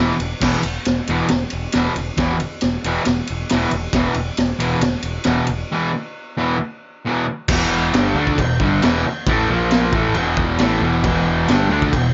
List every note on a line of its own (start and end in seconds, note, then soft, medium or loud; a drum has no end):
0.00 0.11 E1 medium
0.00 0.14 E2 medium
0.00 0.14 B2 medium
0.00 0.14 E3 loud
0.20 0.33 E1 medium
0.20 ride medium
0.41 0.55 E1 medium
0.41 0.58 E2 medium
0.41 0.58 B2 medium
0.41 0.59 E3 medium
0.41 kick loud
0.41 snare loud
0.41 crash loud
0.63 0.77 E1 medium
0.63 ride medium
0.85 1.00 E1 medium
0.85 snare loud
0.85 ride medium
1.07 1.21 E1 medium
1.07 1.25 E2 medium
1.07 1.26 B2 medium
1.07 1.26 E3 loud
1.07 ride medium
1.28 1.44 E1 medium
1.28 snare loud
1.28 ride medium
1.50 1.66 E1 medium
1.50 ride medium
1.72 1.88 E1 medium
1.72 1.92 E2 loud
1.72 1.92 B2 loud
1.72 snare loud
1.72 ride loud
1.77 1.92 E3 loud
1.96 2.10 E1 medium
1.96 ride medium
2.17 2.44 E1 medium
2.17 2.35 E2 medium
2.17 2.35 B2 medium
2.17 2.35 E3 loud
2.17 kick loud
2.17 snare loud
2.17 ride loud
2.40 ride medium
2.61 2.76 E1 medium
2.61 snare loud
2.61 ride loud
2.84 2.98 E1 medium
2.84 3.02 E2 medium
2.84 3.02 B2 loud
2.84 3.02 E3 loud
2.84 ride medium
3.05 3.20 E1 medium
3.05 snare loud
3.05 ride loud
3.27 3.43 E1 medium
3.27 ride medium
3.49 3.65 E1 medium
3.49 3.68 E2 medium
3.49 3.69 B2 loud
3.49 3.69 E3 loud
3.49 snare loud
3.49 ride loud
3.71 3.86 E1 loud
3.71 ride medium
3.93 4.07 E1 loud
3.93 4.12 E2 loud
3.93 4.12 B2 medium
3.93 4.13 E3 loud
3.93 kick loud
3.93 snare loud
3.93 ride loud
4.14 4.30 E1 medium
4.14 ride medium
4.37 4.52 E1 medium
4.37 snare loud
4.37 ride medium
4.59 4.74 E1 medium
4.59 4.77 E2 loud
4.59 4.78 B2 medium
4.59 4.78 E3 loud
4.59 ride medium
4.81 4.95 E1 medium
4.81 snare loud
4.81 ride loud
5.02 5.17 E1 medium
5.02 ride medium
5.24 5.40 E1 medium
5.24 5.44 E2 medium
5.24 5.45 B2 loud
5.24 5.45 E3 medium
5.24 snare loud
5.24 ride medium
5.47 5.63 E1 medium
5.47 ride medium
5.72 5.89 E2 medium
5.72 5.89 B2 loud
5.72 5.90 E3 loud
6.37 6.55 E2 medium
6.37 6.55 B2 loud
6.37 6.56 E3 loud
7.05 7.22 E2 medium
7.05 7.23 B2 medium
7.05 7.23 E3 loud
7.48 7.90 E1 loud
7.48 7.93 E2 medium
7.48 7.93 B2 loud
7.48 7.94 E3 loud
7.48 kick loud
7.48 crash loud
7.48 crash medium
7.93 8.14 G1 medium
7.93 8.15 G2 medium
7.93 8.15 D3 loud
7.93 8.16 G3 loud
7.93 snare loud
7.93 crash medium
8.15 8.36 D2 medium
8.15 8.37 D3 loud
8.15 8.38 A3 loud
8.15 8.38 D4 medium
8.27 kick medium
8.38 8.58 E1 medium
8.38 8.56 E2 medium
8.38 8.56 B2 medium
8.38 kick medium
8.38 crash medium
8.60 8.80 G1 loud
8.60 8.81 G2 loud
8.60 8.82 D3 loud
8.60 8.82 G3 loud
8.60 kick medium
8.82 9.03 E1 loud
8.82 9.04 E2 medium
8.82 9.04 B2 loud
8.82 9.04 E3 medium
8.82 snare loud
8.82 crash medium
9.06 muted distorted electric guitar stroke medium
9.06 muted picked electric bass stroke soft
9.27 9.47 A1 medium
9.27 9.48 A2 loud
9.27 9.49 E3 loud
9.27 9.49 A3 loud
9.27 kick loud
9.27 crash medium
9.49 9.90 A#1 loud
9.49 9.93 A#2 medium
9.49 9.93 F3 medium
9.49 9.94 A#3 loud
9.71 snare loud
9.71 crash medium
9.93 10.14 A1 loud
9.93 10.15 A2 medium
9.93 10.15 E3 loud
9.93 10.15 A3 medium
9.93 kick loud
10.14 10.57 E1 loud
10.14 10.59 E2 loud
10.14 10.59 B2 loud
10.14 10.59 E3 loud
10.14 crash medium
10.37 kick medium
10.59 10.80 A1 loud
10.59 10.81 A2 medium
10.59 10.81 E3 medium
10.59 10.82 A3 loud
10.59 snare loud
10.59 crash medium
10.81 11.02 E1 medium
10.81 11.02 E2 medium
10.81 11.03 B2 medium
10.81 11.03 E3 loud
11.03 11.46 E1 loud
11.03 11.47 E2 medium
11.03 11.48 B2 loud
11.03 11.48 E3 loud
11.03 kick loud
11.03 crash medium
11.48 11.68 G1 medium
11.48 11.70 G2 loud
11.48 11.69 D3 loud
11.48 11.70 G3 loud
11.48 snare loud
11.48 crash medium
11.69 11.90 D2 loud
11.69 11.92 D3 loud
11.69 11.92 A3 medium
11.69 11.92 D4 loud
11.82 kick medium
11.92 12.13 E1 medium
11.92 12.10 E2 medium
11.92 12.10 B2 medium
11.92 kick medium
11.92 crash medium